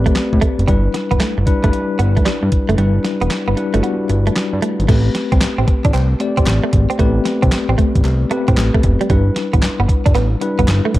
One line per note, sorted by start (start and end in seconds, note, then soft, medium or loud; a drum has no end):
0.00 0.10 A1 medium
0.00 0.70 A3 medium
0.00 0.70 C4 medium
0.00 0.70 G4 medium
0.00 0.68 B4 loud
0.00 0.70 D5 loud
0.06 0.13 A3 medium
0.06 kick medium
0.06 closed hi-hat soft
0.16 snare loud
0.16 clap medium
0.16 closed hi-hat medium
0.33 0.40 A2 medium
0.33 kick medium
0.41 0.55 A3 medium
0.41 kick medium
0.41 closed hi-hat medium
0.59 0.66 F#1 medium
0.59 closed hi-hat soft
0.67 0.89 G1 loud
0.67 1.28 G3 medium
0.67 0.81 G3 medium
0.67 1.28 D4 medium
0.67 1.28 E4 medium
0.67 1.28 B4 medium
0.67 kick medium
0.67 closed hi-hat medium
0.94 muted clean electric guitar stroke soft
0.94 snare medium
0.94 closed hi-hat medium
1.11 1.19 E1 medium
1.11 1.18 B3 medium
1.11 kick medium
1.11 closed hi-hat soft
1.20 1.34 A3 medium
1.20 snare loud
1.20 clap medium
1.20 closed hi-hat medium
1.38 1.45 G1 medium
1.38 muted clean electric guitar stroke soft
1.46 1.59 G3 medium
1.46 1.59 D4 medium
1.46 1.59 E4 medium
1.46 1.60 B4 loud
1.46 kick medium
1.46 closed hi-hat medium
1.63 1.71 G1 loud
1.63 2.41 G3 medium
1.63 1.71 A3 medium
1.63 2.41 D4 medium
1.63 2.42 E4 medium
1.63 2.42 B4 loud
1.63 kick medium
1.63 closed hi-hat medium
1.73 muted clean electric guitar stroke soft
1.73 closed hi-hat medium
1.99 2.21 G1 medium
1.99 2.13 B3 medium
1.99 closed hi-hat medium
2.17 2.24 A3 medium
2.17 kick medium
2.17 closed hi-hat soft
2.25 2.39 G3 medium
2.25 snare loud
2.25 clap medium
2.25 closed hi-hat medium
2.43 2.50 G2 loud
2.43 muted clean electric guitar stroke soft
2.52 kick medium
2.52 closed hi-hat medium
2.69 2.77 F#1 medium
2.69 2.76 A3 medium
2.69 closed hi-hat soft
2.77 2.99 G1 medium
2.77 3.38 G3 medium
2.77 2.92 G3 loud
2.77 3.38 D4 medium
2.77 3.39 E4 medium
2.77 3.39 B4 medium
2.77 closed hi-hat medium
3.04 muted clean electric guitar stroke soft
3.04 snare medium
3.04 closed hi-hat medium
3.21 3.29 E1 medium
3.21 3.29 B3 medium
3.21 closed hi-hat soft
3.30 snare loud
3.30 clap medium
3.30 closed hi-hat medium
3.48 3.55 G1 medium
3.48 3.55 B3 medium
3.56 3.70 G3 medium
3.56 3.70 D4 medium
3.56 3.70 E4 medium
3.56 3.70 B4 medium
3.56 muted clean electric guitar stroke soft
3.56 closed hi-hat medium
3.74 3.82 G1 loud
3.74 4.52 G3 medium
3.74 3.81 A3 medium
3.74 4.52 D4 medium
3.74 4.52 E4 medium
3.74 4.53 F#4 medium
3.74 closed hi-hat medium
3.83 3.97 B3 medium
3.83 closed hi-hat medium
4.09 4.31 G1 medium
4.09 muted clean electric guitar stroke soft
4.09 closed hi-hat medium
4.27 4.34 A3 medium
4.27 closed hi-hat soft
4.36 snare loud
4.36 clap medium
4.36 closed hi-hat medium
4.53 4.61 G2 medium
4.62 4.76 A3 medium
4.62 closed hi-hat medium
4.80 4.87 G#1 medium
4.80 closed hi-hat medium
4.88 5.10 A1 loud
4.88 5.67 A3 medium
4.88 5.02 A3 medium
4.88 5.67 C4 medium
4.88 5.67 G4 medium
4.88 5.67 B4 medium
4.88 kick loud
4.88 closed hi-hat medium
4.88 crash medium
5.15 muted clean electric guitar stroke soft
5.15 snare medium
5.15 closed hi-hat medium
5.32 5.40 C2 medium
5.32 5.39 C4 medium
5.32 kick medium
5.32 closed hi-hat soft
5.41 5.48 A1 soft
5.41 snare loud
5.41 clap medium
5.41 closed hi-hat medium
5.58 5.66 A1 loud
5.58 5.66 C4 medium
5.68 muted clean electric guitar stroke soft
5.68 kick loud
5.68 closed hi-hat medium
5.85 5.92 A1 medium
5.85 5.92 D4 medium
5.85 kick loud
5.85 closed hi-hat medium
5.93 6.15 C2 loud
5.93 6.07 C4 medium
5.93 clap medium
5.93 closed hi-hat medium
6.20 6.81 A3 medium
6.20 6.81 C4 medium
6.20 6.81 G4 medium
6.20 6.81 D5 medium
6.20 muted clean electric guitar stroke soft
6.20 closed hi-hat medium
6.37 6.45 A1 medium
6.37 6.45 C4 medium
6.37 kick medium
6.37 closed hi-hat medium
6.46 6.61 A1 medium
6.46 snare loud
6.46 clap medium
6.46 closed hi-hat medium
6.64 6.71 A3 medium
6.73 6.87 G#1 medium
6.73 muted clean electric guitar stroke soft
6.73 kick medium
6.73 closed hi-hat medium
6.90 6.97 C4 medium
6.90 closed hi-hat soft
6.98 7.20 A1 loud
6.98 7.77 A3 medium
6.98 7.13 A3 medium
6.98 7.07 B3 medium
6.98 7.78 G4 medium
6.98 7.78 B4 medium
6.98 kick loud
6.98 closed hi-hat medium
7.05 7.81 C4 medium
7.25 muted clean electric guitar stroke soft
7.25 snare medium
7.25 closed hi-hat medium
7.42 7.50 C2 loud
7.42 7.50 C4 medium
7.42 kick medium
7.42 closed hi-hat soft
7.52 7.59 A1 soft
7.52 muted clean electric guitar stroke soft
7.52 snare loud
7.52 clap medium
7.52 closed hi-hat medium
7.69 7.76 A1 loud
7.69 7.76 C4 medium
7.78 7.92 A3 medium
7.78 kick medium
7.78 closed hi-hat medium
7.95 8.03 A1 medium
7.95 kick loud
7.95 closed hi-hat medium
8.04 8.26 C2 loud
8.04 muted clean electric guitar stroke soft
8.04 clap medium
8.04 closed hi-hat medium
8.30 8.91 A3 medium
8.30 8.44 A3 medium
8.30 8.91 C4 medium
8.30 8.91 G4 medium
8.30 8.92 B4 loud
8.30 closed hi-hat medium
8.48 8.56 A1 medium
8.48 8.55 C4 medium
8.48 kick medium
8.48 closed hi-hat soft
8.57 8.71 A1 medium
8.57 snare loud
8.57 clap medium
8.57 closed hi-hat medium
8.74 8.82 A3 medium
8.74 kick medium
8.83 8.97 F#1 loud
8.83 muted clean electric guitar stroke soft
8.83 kick medium
8.83 closed hi-hat medium
9.01 9.08 G3 medium
9.01 closed hi-hat medium
9.10 9.31 G1 loud
9.10 9.88 G3 medium
9.10 9.23 G3 medium
9.10 9.88 D4 medium
9.10 9.88 E4 medium
9.10 9.89 B4 medium
9.10 kick loud
9.10 closed hi-hat medium
9.36 muted clean electric guitar stroke soft
9.36 snare medium
9.36 closed hi-hat medium
9.53 9.61 A1 medium
9.53 9.61 B3 medium
9.53 kick medium
9.53 closed hi-hat soft
9.62 9.69 G1 soft
9.62 snare loud
9.62 clap medium
9.62 closed hi-hat medium
9.79 9.87 G1 medium
9.79 9.87 B3 medium
9.89 muted clean electric guitar stroke soft
9.89 kick loud
9.89 closed hi-hat medium
10.06 10.13 G1 loud
10.06 10.13 D4 medium
10.06 kick loud
10.06 closed hi-hat medium
10.15 10.36 A1 loud
10.15 10.28 B3 medium
10.15 clap medium
10.15 closed hi-hat medium
10.41 10.99 G3 medium
10.41 10.99 D4 medium
10.41 10.99 E4 medium
10.41 10.99 B4 medium
10.41 muted clean electric guitar stroke soft
10.41 closed hi-hat medium
10.59 10.66 G1 loud
10.59 10.66 B3 medium
10.59 kick medium
10.59 closed hi-hat soft
10.68 10.82 G1 loud
10.68 snare loud
10.68 clap medium
10.68 closed hi-hat medium
10.85 10.92 A3 medium
10.94 10.99 F#1 loud
10.94 muted clean electric guitar stroke soft
10.94 kick medium
10.94 closed hi-hat medium